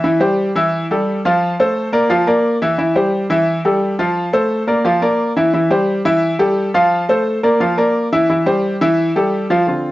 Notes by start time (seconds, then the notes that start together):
0.04 E3 E4 E5
0.20 G3 G4 C5
0.55 E3 E4 E5
0.91 G3 G4 A4
1.25 F3 F4 F5
1.59 A3 A4 C5
1.92 A#3 A#4 D5
2.10 F3 F4 F5
2.27 A#3 A#4 D5
2.62 E3 E4 E5
2.78 E3 E4 E5
2.95 G3 G4 C5
3.30 E3 E4 E5
3.65 G3 G4 A4
3.99 F3 F4 F5
4.33 A3 A4 C5
4.67 A#3 A#4 D5
4.85 F3 F4 F5
5.01 A#3 A#4 D5
5.36 E3 E4 E5
5.53 E3 E4 E5
5.70 G3 G4 C5
6.05 E3 E4 E5
6.39 G3 G4 A4
6.74 F3 F4 F5
7.09 A3 A4 C5
7.43 A#3 A#4 D5
7.60 F3 F4 F5
7.77 A#3 A#4 D5
8.12 E3 E4 E5
8.29 E3 E4 E5
8.46 G3 G4 C5
8.81 E3 E4 E5
9.16 G3 G4 A4
9.50 F3 F4 F5
9.67 D3 C4 F4